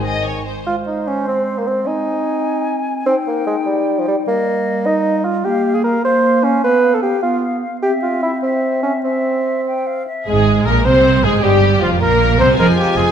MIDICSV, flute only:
0, 0, Header, 1, 2, 480
1, 0, Start_track
1, 0, Tempo, 403226
1, 780, Time_signature, 6, 3, 24, 8
1, 4599, Tempo, 396301
1, 9399, Tempo, 408719
1, 12279, Tempo, 385109
1, 15815, End_track
2, 0, Start_track
2, 0, Title_t, "Flute"
2, 0, Program_c, 0, 73
2, 0, Note_on_c, 0, 80, 36
2, 538, Note_off_c, 0, 80, 0
2, 778, Note_on_c, 0, 72, 38
2, 2211, Note_on_c, 0, 80, 38
2, 2229, Note_off_c, 0, 72, 0
2, 3648, Note_on_c, 0, 79, 44
2, 3666, Note_off_c, 0, 80, 0
2, 5077, Note_off_c, 0, 79, 0
2, 5085, Note_on_c, 0, 75, 42
2, 6227, Note_off_c, 0, 75, 0
2, 6526, Note_on_c, 0, 77, 49
2, 6759, Note_off_c, 0, 77, 0
2, 6777, Note_on_c, 0, 77, 41
2, 6997, Note_off_c, 0, 77, 0
2, 7005, Note_on_c, 0, 77, 40
2, 7236, Note_off_c, 0, 77, 0
2, 7244, Note_on_c, 0, 77, 40
2, 7458, Note_off_c, 0, 77, 0
2, 7465, Note_on_c, 0, 77, 39
2, 7699, Note_off_c, 0, 77, 0
2, 7706, Note_on_c, 0, 77, 38
2, 7943, Note_off_c, 0, 77, 0
2, 7950, Note_on_c, 0, 77, 48
2, 8176, Note_off_c, 0, 77, 0
2, 8184, Note_on_c, 0, 77, 41
2, 8411, Note_off_c, 0, 77, 0
2, 8418, Note_on_c, 0, 77, 37
2, 8645, Note_off_c, 0, 77, 0
2, 8653, Note_on_c, 0, 77, 45
2, 8896, Note_off_c, 0, 77, 0
2, 8903, Note_on_c, 0, 77, 42
2, 9136, Note_off_c, 0, 77, 0
2, 9143, Note_on_c, 0, 77, 34
2, 9378, Note_off_c, 0, 77, 0
2, 9385, Note_on_c, 0, 76, 41
2, 10055, Note_off_c, 0, 76, 0
2, 10097, Note_on_c, 0, 76, 43
2, 10810, Note_off_c, 0, 76, 0
2, 10825, Note_on_c, 0, 76, 35
2, 11494, Note_off_c, 0, 76, 0
2, 11558, Note_on_c, 0, 79, 42
2, 11797, Note_on_c, 0, 77, 38
2, 11815, Note_off_c, 0, 79, 0
2, 12030, Note_off_c, 0, 77, 0
2, 12037, Note_on_c, 0, 76, 33
2, 12271, Note_off_c, 0, 76, 0
2, 15815, End_track
0, 0, End_of_file